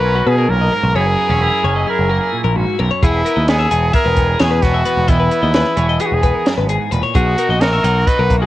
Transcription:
Already playing: picked electric bass B1, clean electric guitar F#3 D#4 F#4 A#4, trumpet B4
0.05 clean electric guitar C#4
0.15 clean electric guitar F#4
0.26 picked electric bass B2, clean electric guitar B2 B4, trumpet G#4
0.38 clean electric guitar A#4
0.49 picked electric bass B1, clean electric guitar A#2, trumpet A#4
0.61 clean electric guitar D#5
0.72 clean electric guitar G#2 A#4
0.83 picked electric bass B1
0.95 picked electric bass F#1, clean electric guitar F#2 E4 C#5, trumpet G#4
1.07 clean electric guitar A#4
1.18 clean electric guitar B3
1.29 picked electric bass E1, clean electric guitar C#4 C#5
1.41 clean electric guitar E4 A#4
1.64 picked electric bass F#1, clean electric guitar F#3 C#4 C#5
1.76 clean electric guitar D#5
1.87 clean electric guitar E4 G#4, trumpet A#4
1.99 picked electric bass F#1
2.10 clean electric guitar A#3 A#4
2.21 clean electric guitar G#4
2.33 clean electric guitar A#2
2.44 picked electric bass A#1, clean electric guitar A#4
2.55 clean electric guitar G#2 F#4
2.79 picked electric bass B1, clean electric guitar F#2 A#4
2.91 clean electric guitar C#5
3.02 picked electric bass E1, clean electric guitar B3 G#4, trumpet E4, kick, closed hi-hat
3.25 clean electric guitar B3 A#4, closed hi-hat
3.36 picked electric bass D#2, clean electric guitar D#5
3.48 clean electric guitar B3, trumpet G#4, snare, closed hi-hat
3.59 clean electric guitar E5
3.71 picked electric bass E1, clean electric guitar E3 B3 G#5, closed hi-hat
3.93 clean electric guitar G#4 E5, trumpet A#4, kick, closed hi-hat
4.05 picked electric bass E1, clean electric guitar B4
4.17 clean electric guitar B3, kick, closed hi-hat
4.28 clean electric guitar G#4
4.40 picked electric bass E2, clean electric guitar B2 C#5, trumpet G#4, snare, closed hi-hat
4.51 clean electric guitar B4
4.62 picked electric bass E1, clean electric guitar B3, trumpet F#4, kick, snare, closed hi-hat
4.74 clean electric guitar E5
4.85 clean electric guitar E2 B3 B4, closed hi-hat
4.97 picked electric bass E1
5.08 picked electric bass E1, clean electric guitar E2 B3 D#5, trumpet E4, kick, closed hi-hat
5.20 clean electric guitar B4
5.31 clean electric guitar B3, closed hi-hat
5.43 picked electric bass D#2, clean electric guitar D#5
5.54 clean electric guitar B3 B4, snare, closed hi-hat
5.76 picked electric bass E1, clean electric guitar E3 B3 C#5, closed hi-hat
5.89 clean electric guitar D#5
6.00 clean electric guitar B3 G#4, trumpet G#4, closed hi-hat
6.06 trumpet F#4
6.12 picked electric bass E1, trumpet G#4
6.23 clean electric guitar B3 B4, kick, closed hi-hat
6.35 clean electric guitar A#4
6.46 clean electric guitar F#2, snare, closed hi-hat
6.58 picked electric bass G#1, clean electric guitar B4
6.69 clean electric guitar G#2 G#4, closed hi-hat
6.92 picked electric bass E1, clean electric guitar A#2 B4, closed hi-hat
7.03 clean electric guitar C#5
7.15 picked electric bass B1, clean electric guitar B2 D#4 G#4, trumpet F#4, kick, closed hi-hat
7.38 clean electric guitar D#4 A#4, closed hi-hat
7.49 picked electric bass A#1, clean electric guitar D#5
7.61 clean electric guitar F#4, trumpet A#4, snare, closed hi-hat
7.73 clean electric guitar E5
7.82 picked electric bass B1, clean electric guitar F#3 D#4 F#5, closed hi-hat
8.07 clean electric guitar F#4 D#5, trumpet B4, kick, closed hi-hat
8.19 picked electric bass B1, clean electric guitar A#4
8.30 clean electric guitar A#3, kick, closed hi-hat
8.38 clean electric guitar F#4, trumpet G#4 A#4

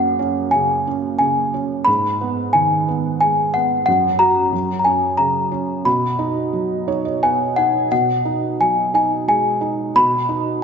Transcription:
Already playing: felt piano F#2 C#3 A#3 C#4, celesta F#5
0.19 felt piano C#4
0.51 felt piano C#3, celesta G#5
0.87 felt piano C#4
1.19 felt piano C#3, celesta G#5
1.54 felt piano C#4
1.85 felt piano G#2, celesta B5
2.21 felt piano B3
2.53 felt piano D#3, celesta G#5
2.88 felt piano B3
3.21 felt piano G#3, celesta G#5
3.54 felt piano B3, celesta F#5
3.86 felt piano F#2, celesta F#5
4.19 felt piano F#4, celesta A#5
4.53 felt piano F#2
4.79 celesta A#5
4.85 felt piano C#4, celesta G#5
5.17 felt piano C#3, celesta A#5
5.52 felt piano C#4
5.85 felt piano B2, celesta B5
6.19 felt piano D#4
6.53 felt piano F#3
6.88 felt piano D#4 C#5
7.05 felt piano D#5
7.23 felt piano B3 F#5, celesta G#5
7.56 felt piano D#4 G#5, celesta F#5
7.92 felt piano B2, celesta F#5
8.25 felt piano D#4
8.60 felt piano F#3, celesta G#5
8.94 felt piano D#4, celesta G#5
9.28 felt piano G#3, celesta G#5
9.61 felt piano D#4
9.96 felt piano B2, celesta B5
10.29 felt piano D#4

